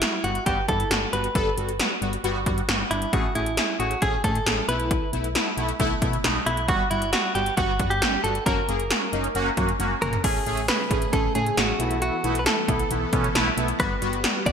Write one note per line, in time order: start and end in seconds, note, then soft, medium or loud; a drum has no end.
0.00 0.16 G3 medium
0.00 0.16 B3 medium
0.00 0.25 E4 medium
0.00 0.16 F#4 medium
0.00 snare loud
0.00 closed hi-hat medium
0.24 0.40 G1 loud
0.24 0.38 G3 medium
0.24 0.38 B3 medium
0.24 0.46 F#4 medium
0.24 0.38 F#4 medium
0.24 closed hi-hat medium
0.35 closed hi-hat medium
0.46 0.62 G1 loud
0.46 0.60 G3 medium
0.46 0.60 B3 medium
0.46 0.60 F#4 loud
0.46 0.68 G4 medium
0.46 kick medium
0.46 closed hi-hat medium
0.68 0.84 G2 loud
0.68 0.83 G3 medium
0.68 0.83 B3 medium
0.68 0.83 E4 medium
0.68 1.10 A4 loud
0.68 kick medium
0.68 closed hi-hat medium
0.80 closed hi-hat medium
0.91 1.06 G1 loud
0.91 1.05 G3 medium
0.91 1.05 B3 medium
0.91 1.05 F#4 medium
0.91 snare loud
0.91 closed hi-hat medium
1.13 1.29 G1 loud
1.13 1.27 G3 medium
1.13 1.27 B3 medium
1.13 1.27 F#4 medium
1.13 1.54 B4 loud
1.13 closed hi-hat medium
1.24 closed hi-hat medium
1.35 1.51 G1 loud
1.35 1.49 G3 medium
1.35 1.49 B3 medium
1.35 1.49 A4 loud
1.35 kick loud
1.35 closed hi-hat medium
1.57 1.81 G1 loud
1.57 1.71 G3 medium
1.57 1.71 B3 medium
1.57 1.71 F#4 medium
1.57 closed hi-hat medium
1.69 closed hi-hat medium
1.79 1.94 G3 medium
1.79 1.94 B3 medium
1.79 1.94 F#4 loud
1.79 snare loud
1.79 closed hi-hat medium
2.02 2.17 G1 loud
2.02 2.16 G3 medium
2.02 2.16 B3 medium
2.02 2.16 F#4 medium
2.02 closed hi-hat medium
2.13 closed hi-hat medium
2.24 2.48 G1 loud
2.24 2.38 G3 loud
2.24 2.38 B3 loud
2.24 2.38 F#4 loud
2.24 closed hi-hat medium
2.46 2.62 G2 loud
2.46 2.60 G3 medium
2.46 2.60 B3 medium
2.46 2.60 F#4 loud
2.46 kick medium
2.46 closed hi-hat medium
2.58 closed hi-hat medium
2.68 2.84 G1 loud
2.68 2.82 G3 medium
2.68 2.82 B3 medium
2.68 2.82 F#4 loud
2.68 snare loud
2.68 closed hi-hat medium
2.91 3.06 G1 loud
2.91 3.05 G3 medium
2.91 3.05 B3 medium
2.91 3.05 D4 medium
2.91 3.11 E4 medium
2.91 closed hi-hat medium
3.02 closed hi-hat soft
3.13 3.29 A1 loud
3.13 3.27 A3 loud
3.13 3.27 C#4 medium
3.13 3.34 F#4 medium
3.13 3.27 G#4 loud
3.13 kick loud
3.13 closed hi-hat medium
3.35 3.58 A1 loud
3.35 3.49 A3 medium
3.35 3.49 C#4 medium
3.35 3.79 E4 medium
3.35 3.49 G#4 medium
3.35 closed hi-hat medium
3.46 closed hi-hat medium
3.57 3.71 A3 medium
3.57 3.71 C#4 medium
3.57 3.71 G#4 medium
3.57 snare loud
3.57 closed hi-hat medium
3.79 3.95 A1 loud
3.79 3.94 A3 medium
3.79 3.94 C#4 medium
3.79 4.03 F#4 medium
3.79 3.94 G#4 medium
3.79 closed hi-hat medium
3.91 closed hi-hat medium
4.02 4.18 A1 loud
4.02 4.16 A3 medium
4.02 4.16 C#4 medium
4.02 4.16 G#4 loud
4.02 4.23 G#4 medium
4.02 kick medium
4.02 closed hi-hat medium
4.24 4.40 A2 loud
4.24 4.38 A3 medium
4.24 4.38 C#4 medium
4.24 4.38 G#4 medium
4.24 4.65 A4 loud
4.24 kick medium
4.24 closed hi-hat medium
4.35 closed hi-hat medium
4.46 4.62 A1 loud
4.46 4.60 A3 medium
4.46 4.60 C#4 medium
4.46 4.60 G#4 medium
4.46 snare loud
4.46 closed hi-hat medium
4.68 5.00 B1 loud
4.68 5.04 A3 medium
4.68 5.04 B3 medium
4.68 5.04 E4 medium
4.68 5.10 B4 loud
4.68 closed hi-hat medium
4.80 closed hi-hat medium
4.91 kick loud
4.91 closed hi-hat medium
5.13 5.36 B1 loud
5.13 5.27 A3 medium
5.13 5.27 B3 medium
5.13 5.27 E4 medium
5.13 closed hi-hat medium
5.24 closed hi-hat medium
5.35 5.49 A3 medium
5.35 5.49 B3 medium
5.35 5.49 E4 loud
5.35 snare loud
5.35 closed hi-hat medium
5.57 5.73 B1 loud
5.57 5.71 A3 medium
5.57 5.71 B3 medium
5.57 5.71 E4 loud
5.57 closed hi-hat medium
5.69 closed hi-hat medium
5.80 5.95 B1 loud
5.80 5.94 A3 loud
5.80 5.94 B3 loud
5.80 5.94 E4 loud
5.80 kick medium
5.80 closed hi-hat medium
6.02 6.17 B2 loud
6.02 6.16 A3 medium
6.02 6.16 B3 medium
6.02 6.16 E4 loud
6.02 kick medium
6.02 closed hi-hat medium
6.13 closed hi-hat medium
6.24 6.40 B1 loud
6.24 6.38 A3 medium
6.24 6.38 B3 medium
6.24 6.38 D#4 loud
6.24 snare loud
6.24 closed hi-hat medium
6.46 6.70 B1 loud
6.46 6.60 A3 medium
6.46 6.60 B3 medium
6.46 6.60 E4 medium
6.46 6.68 E4 medium
6.46 closed hi-hat medium
6.57 closed hi-hat medium
6.68 6.84 G1 loud
6.68 6.83 G3 loud
6.68 6.83 B3 medium
6.68 6.83 F#4 loud
6.68 6.90 F#4 medium
6.68 kick loud
6.68 closed hi-hat medium
6.91 7.14 G1 loud
6.91 7.05 G3 medium
6.91 7.05 B3 medium
6.91 7.12 E4 medium
6.91 7.05 F#4 medium
6.91 closed hi-hat medium
7.02 closed hi-hat medium
7.13 7.27 G3 medium
7.13 7.27 B3 medium
7.13 7.35 F#4 medium
7.13 7.27 F#4 medium
7.13 snare loud
7.13 closed hi-hat medium
7.35 7.51 G1 loud
7.35 7.49 G3 medium
7.35 7.49 B3 medium
7.35 7.49 F#4 medium
7.35 7.57 G4 medium
7.35 closed hi-hat medium
7.46 closed hi-hat medium
7.57 7.81 G1 loud
7.57 7.72 G3 medium
7.57 7.72 B3 medium
7.57 7.88 F#4 medium
7.57 7.72 F#4 loud
7.57 kick loud
7.57 closed hi-hat medium
7.79 8.03 G2 loud
7.79 7.94 G3 medium
7.79 7.94 B3 medium
7.79 7.94 F#4 medium
7.79 kick medium
7.79 closed hi-hat medium
7.90 8.23 G4 loud
7.90 closed hi-hat medium
8.02 8.17 G1 loud
8.02 8.16 G3 medium
8.02 8.16 B3 medium
8.02 8.16 C#4 medium
8.02 snare loud
8.02 closed hi-hat medium
8.24 8.40 G1 loud
8.24 8.38 G3 medium
8.24 8.38 B3 medium
8.24 8.38 F#4 medium
8.24 8.46 A4 loud
8.24 closed hi-hat medium
8.35 closed hi-hat soft
8.46 8.62 F#1 loud
8.46 8.60 A#3 medium
8.46 8.60 C#4 medium
8.46 8.60 F#4 loud
8.46 9.98 A#4 medium
8.46 kick loud
8.46 closed hi-hat medium
8.68 8.92 F#1 loud
8.68 8.82 A#3 medium
8.68 8.82 C#4 medium
8.68 8.82 G#4 medium
8.68 closed hi-hat medium
8.80 closed hi-hat medium
8.90 9.05 A#3 medium
8.90 9.05 C#4 medium
8.90 9.05 F#4 medium
8.90 snare loud
8.90 closed hi-hat medium
9.13 9.28 F#1 loud
9.13 9.27 A#3 medium
9.13 9.27 C#4 medium
9.13 9.27 D#4 loud
9.13 closed hi-hat medium
9.24 closed hi-hat medium
9.35 9.51 F#1 medium
9.35 9.49 A#3 loud
9.35 9.49 C#4 loud
9.35 9.49 F#4 loud
9.35 closed hi-hat medium
9.57 9.73 F#2 loud
9.57 9.71 A#3 medium
9.57 9.71 C#4 medium
9.57 9.71 F#4 loud
9.57 kick medium
9.57 closed hi-hat medium
9.69 closed hi-hat medium
9.79 9.95 F#1 loud
9.79 9.94 A#3 medium
9.79 9.94 C#4 medium
9.79 9.94 F#4 loud
9.79 closed hi-hat medium
9.79 high tom medium
10.02 10.17 F#1 medium
10.02 10.16 A#3 medium
10.02 10.16 C#4 medium
10.02 10.16 F#4 loud
10.02 10.23 A#4 medium
10.02 closed hi-hat medium
10.02 mid tom medium
10.13 closed hi-hat medium
10.13 floor tom medium
10.24 10.40 A1 loud
10.24 11.78 C#3 medium
10.24 10.38 A3 loud
10.24 11.78 A3 medium
10.24 10.38 C#4 medium
10.24 10.68 G#4 loud
10.24 11.78 G#4 medium
10.24 10.38 G#4 loud
10.24 kick loud
10.24 closed hi-hat medium
10.24 crash medium
10.46 10.70 A1 loud
10.46 10.60 A3 loud
10.46 10.60 C#4 medium
10.46 10.60 G#4 loud
10.46 closed hi-hat medium
10.57 closed hi-hat medium
10.68 10.83 A3 medium
10.68 10.83 C#4 medium
10.68 10.83 G#4 medium
10.68 11.12 B4 loud
10.68 snare loud
10.68 closed hi-hat medium
10.91 11.06 A1 loud
10.91 11.05 A3 medium
10.91 11.05 C#4 medium
10.91 11.05 G#4 medium
10.91 kick medium
10.91 closed hi-hat medium
11.02 closed hi-hat medium
11.13 11.29 A1 loud
11.13 11.27 A3 medium
11.13 11.27 C#4 medium
11.13 11.27 G#4 medium
11.13 11.35 A4 loud
11.13 kick loud
11.13 closed hi-hat medium
11.35 11.51 A2 loud
11.35 11.49 A3 medium
11.35 11.49 C#4 medium
11.35 11.49 G#4 medium
11.35 11.56 G#4 medium
11.35 closed hi-hat medium
11.46 closed hi-hat medium
11.57 11.73 A1 loud
11.57 11.71 A3 medium
11.57 11.71 C#4 medium
11.57 12.01 F#4 medium
11.57 11.71 G#4 loud
11.57 snare loud
11.57 closed hi-hat medium
11.79 12.11 B1 loud
11.79 13.78 E3 medium
11.79 12.15 A3 medium
11.79 14.52 B3 medium
11.79 12.15 B3 medium
11.79 12.15 E4 medium
11.79 13.78 A4 medium
11.79 closed hi-hat medium
11.91 closed hi-hat soft
12.02 12.40 F#4 medium
12.02 closed hi-hat medium
12.24 12.47 B1 loud
12.24 12.38 A3 loud
12.24 12.38 B3 medium
12.24 12.38 E4 loud
12.24 closed hi-hat medium
12.35 closed hi-hat medium
12.39 12.46 B4 medium
12.46 12.60 A3 medium
12.46 12.60 B3 medium
12.46 12.60 E4 medium
12.46 13.31 A4 medium
12.46 snare loud
12.46 closed hi-hat medium
12.68 12.84 B1 loud
12.68 12.83 A3 medium
12.68 12.83 B3 medium
12.68 12.83 E4 medium
12.68 kick medium
12.68 closed hi-hat medium
12.79 closed hi-hat medium
12.91 13.06 B1 loud
12.91 13.05 A3 medium
12.91 13.05 B3 medium
12.91 13.05 E4 medium
12.91 closed hi-hat medium
13.13 13.28 B2 loud
13.13 13.27 A3 medium
13.13 13.27 B3 medium
13.13 13.27 C#4 loud
13.13 kick medium
13.13 closed hi-hat medium
13.24 closed hi-hat soft
13.35 13.51 B1 loud
13.35 13.49 A3 loud
13.35 13.49 B3 loud
13.35 13.49 E4 loud
13.35 snare loud
13.35 closed hi-hat medium
13.57 13.73 B1 loud
13.57 13.71 A3 medium
13.57 13.71 B3 medium
13.57 13.71 E4 loud
13.57 closed hi-hat medium
13.68 closed hi-hat medium
13.80 13.95 G1 loud
13.80 14.52 G3 medium
13.80 13.94 G3 medium
13.80 13.94 B3 medium
13.80 13.94 F#4 loud
13.80 14.52 G4 medium
13.80 14.42 B4 loud
13.80 kick loud
13.80 closed hi-hat medium
14.02 14.25 G1 loud
14.02 14.16 G3 loud
14.02 14.16 B3 medium
14.02 14.16 F#4 loud
14.02 closed hi-hat medium
14.13 closed hi-hat medium
14.24 14.38 G3 medium
14.24 14.38 B3 medium
14.24 14.38 F#4 medium
14.24 snare loud
14.24 closed hi-hat medium
14.46 14.52 G1 loud
14.46 14.52 G3 medium
14.46 14.52 B3 medium
14.46 14.52 F#4 medium
14.46 14.52 D5 loud
14.46 kick medium
14.46 closed hi-hat medium